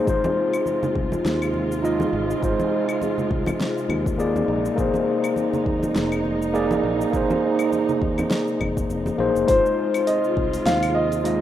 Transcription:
0.00 9.44 C3 medium
0.00 9.44 G#3 medium
0.05 0.17 G#1 medium
0.05 1.80 G#3 medium
0.05 1.81 D#4 medium
0.05 4.44 F4 medium
0.05 1.81 F4 medium
0.05 kick loud
0.05 shaker medium
0.10 1.82 C5 medium
0.24 high conga loud
0.24 shaker soft
0.53 claves medium
0.53 shaker medium
0.66 high conga medium
0.66 shaker medium
0.83 low conga medium
0.83 shaker soft
0.95 1.15 C2 medium
0.95 kick loud
1.12 high conga medium
1.12 shaker medium
1.25 2.06 D#2 medium
1.25 snare medium
1.25 shaker soft
1.42 claves medium
1.42 shaker soft
1.54 high conga medium
1.72 shaker medium
1.82 2.39 G#3 medium
1.82 2.39 D#4 medium
1.82 2.39 F4 medium
1.82 2.40 D#5 medium
1.82 shaker medium
2.00 high conga medium
2.00 shaker soft
2.13 2.33 G#1 medium
2.31 shaker medium
2.40 2.52 G#1 loud
2.40 4.15 G#3 medium
2.40 4.16 D#4 medium
2.40 4.16 F4 medium
2.40 kick loud
2.40 shaker medium
2.45 4.17 C5 medium
2.60 high conga medium
2.60 shaker soft
2.89 claves medium
2.89 shaker medium
3.02 high conga medium
3.02 shaker soft
3.18 low conga medium
3.18 shaker soft
3.31 3.50 C2 medium
3.31 kick loud
3.46 high conga medium
3.46 claves medium
3.46 shaker medium
3.60 snare medium
3.60 shaker soft
3.78 shaker soft
3.89 4.41 D#2 loud
3.89 high conga medium
3.89 claves medium
4.06 kick medium
4.06 shaker medium
4.18 4.74 A#3 medium
4.18 4.75 D#4 medium
4.18 4.75 G#4 medium
4.18 4.75 D5 medium
4.18 shaker medium
4.36 high conga medium
4.36 shaker soft
4.48 4.68 A#1 medium
4.48 9.44 D#4 medium
4.65 shaker medium
4.76 4.88 A#1 medium
4.76 6.50 A#3 medium
4.76 6.51 D#4 medium
4.76 6.52 G#4 medium
4.76 kick loud
4.76 shaker soft
4.80 6.52 C5 medium
4.94 high conga medium
4.94 shaker soft
5.24 claves medium
5.24 shaker medium
5.36 high conga medium
5.36 shaker soft
5.53 low conga medium
5.53 shaker soft
5.66 5.86 D#2 medium
5.66 kick medium
5.83 high conga medium
5.83 shaker medium
5.95 6.77 F1 medium
5.95 snare medium
5.95 shaker soft
6.12 claves medium
6.12 shaker soft
6.25 high conga medium
6.42 shaker medium
6.53 7.10 A#3 medium
6.53 7.10 D#4 medium
6.53 7.10 G#4 medium
6.53 7.11 D5 medium
6.53 shaker soft
6.71 high conga medium
6.71 shaker soft
6.83 7.03 A#1 medium
7.01 shaker medium
7.11 7.23 A#1 medium
7.11 8.86 A#3 medium
7.11 8.87 D#4 medium
7.11 8.87 G#4 medium
7.11 kick loud
7.11 shaker medium
7.16 8.88 C5 medium
7.30 high conga medium
7.30 shaker soft
7.59 claves medium
7.59 shaker medium
7.72 high conga medium
7.72 shaker medium
7.89 low conga medium
7.89 shaker soft
8.01 8.21 D#2 medium
8.01 kick medium
8.18 high conga medium
8.18 claves medium
8.18 shaker medium
8.31 snare medium
8.31 shaker medium
8.48 shaker soft
8.61 8.89 F1 loud
8.61 kick medium
8.61 high conga medium
8.61 claves medium
8.77 kick medium
8.77 shaker medium
8.90 9.09 F1 medium
8.90 shaker soft
9.06 high conga medium
9.06 shaker soft
9.18 9.29 A#1 medium
9.18 9.45 A#3 medium
9.18 9.45 D#4 medium
9.18 9.46 G#4 medium
9.18 9.46 C5 medium
9.35 9.44 F1 medium
9.35 shaker medium
9.46 9.58 G#1 loud
9.46 11.41 C3 medium
9.46 11.21 G#3 medium
9.46 11.41 G#3 medium
9.46 11.21 D#4 medium
9.46 11.41 F4 medium
9.46 11.22 F4 medium
9.46 10.09 C5 loud
9.46 kick loud
9.46 open hi-hat medium
9.46 shaker medium
9.51 11.23 C5 medium
9.66 shaker soft
9.94 open hi-hat soft
9.94 claves medium
9.94 shaker medium
10.07 10.68 D#5 loud
10.07 open hi-hat medium
10.07 shaker medium
10.24 shaker soft
10.37 10.56 C2 medium
10.37 kick medium
10.53 open hi-hat soft
10.53 shaker medium
10.66 11.41 D#2 medium
10.66 10.96 F5 loud
10.66 snare medium
10.66 open hi-hat medium
10.66 shaker medium
10.83 open hi-hat soft
10.83 claves medium
10.83 shaker soft
10.95 11.41 D#5 loud
11.12 open hi-hat soft
11.12 shaker medium
11.24 11.41 G#3 medium
11.24 11.41 D#4 medium
11.24 11.41 F4 medium
11.24 11.41 D#5 medium
11.24 open hi-hat medium
11.24 shaker medium

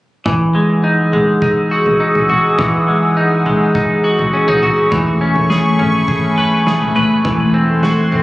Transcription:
0.26 2.58 E3 medium
0.26 4.88 G#4 medium
0.26 4.88 F#5 medium
0.26 4.88 D#6 medium
0.26 4.88 E6 medium
0.26 kick medium
0.26 floor tom medium
0.55 1.13 G#3 soft
0.84 1.41 D#4 soft
1.13 2.88 G#3 soft
1.13 floor tom medium
1.42 1.99 D#4 medium
1.42 kick medium
1.71 2.28 F#4 medium
1.86 floor tom medium
2.00 3.16 D#4 soft
2.15 floor tom medium
2.29 4.03 F#4 medium
2.29 floor tom medium
2.58 4.91 E3 medium
2.58 kick medium
2.58 floor tom medium
2.88 3.46 G#3 soft
3.17 3.74 D#4 soft
3.46 6.96 G#3 soft
3.46 floor tom medium
3.75 4.33 D#4 medium
3.75 kick medium
4.04 4.61 F#4 medium
4.19 floor tom medium
4.34 4.48 C#4 soft
4.48 4.98 D#4 soft
4.48 floor tom medium
4.63 4.98 F#4 medium
4.63 floor tom medium
4.91 5.61 E1 medium
4.91 7.24 E3 medium
4.91 8.23 A3 medium
4.91 8.23 G#5 medium
4.91 7.23 B5 medium
4.91 7.23 C#6 medium
4.91 kick medium
4.91 floor tom medium
5.21 5.78 C#4 soft
5.36 floor tom medium
5.50 6.08 G#4 medium
5.50 snare medium
5.79 6.38 G#1 medium
5.79 7.31 C#4 soft
5.79 floor tom medium
6.08 6.66 G#4 soft
6.08 kick medium
6.38 7.21 E1 medium
6.38 6.95 B4 medium
6.67 7.83 G#4 soft
6.67 snare medium
6.82 floor tom medium
6.96 7.31 B4 medium
6.96 floor tom medium
7.25 7.94 E1 medium
7.25 8.23 E3 medium
7.25 8.23 F#5 medium
7.25 8.23 C6 medium
7.25 kick medium
7.25 floor tom medium
7.54 8.11 C4 soft
7.83 8.23 F#4 soft
7.83 snare medium
8.12 8.23 F#1 medium
8.12 8.23 C4 soft
8.12 floor tom medium

